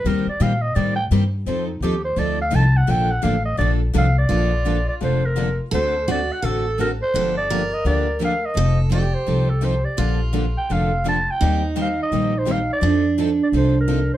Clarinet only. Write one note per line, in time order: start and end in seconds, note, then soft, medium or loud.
0.07 0.28 A#4 medium
0.29 0.43 D5 medium
0.42 0.63 F5 medium
0.62 0.76 D#5 medium
0.75 0.95 D5 medium
0.96 1.05 G5 loud
1.47 1.66 C5 medium
1.67 1.83 D#4 soft
1.83 2.04 G4 medium
2.05 2.20 C5 medium
2.19 2.40 D5 medium
2.42 2.57 F5 loud
2.55 2.78 A5 loud
2.77 2.92 F#5 medium
2.90 3.12 G5 loud
3.11 3.25 F#5 loud
3.24 3.44 F5 medium
3.45 3.58 D#5 medium
3.58 3.71 D5 medium
3.97 4.16 F5 loud
4.18 4.84 D5 loud
4.89 4.95 D5 medium
5.03 5.27 C5 medium
5.25 5.60 A#4 medium
5.74 6.06 C5 medium
6.11 6.34 D5 medium
6.32 6.46 F#5 medium
6.45 6.80 A4 medium
6.81 6.90 A#4 medium
7.02 7.34 C5 loud
7.37 7.75 D5 loud
7.73 7.86 D#5 medium
7.86 8.19 D5 medium
8.24 8.47 F5 medium
8.45 8.79 D#5 medium
8.94 9.16 D5 medium
9.15 9.51 C5 medium
9.49 9.66 A4 medium
9.64 9.87 C5 medium
9.85 10.20 D5 medium
10.58 10.74 G5 medium
10.72 11.06 F5 medium
11.09 11.32 A5 loud
11.31 11.64 G5 loud
11.81 11.99 F5 medium
12.03 12.40 D#5 medium
12.38 12.53 C5 medium
12.52 12.70 F5 medium
12.73 13.16 D5 loud
13.43 13.49 D5 medium
13.57 13.77 C5 medium
13.80 14.09 A#4 medium
14.13 14.17 C5 medium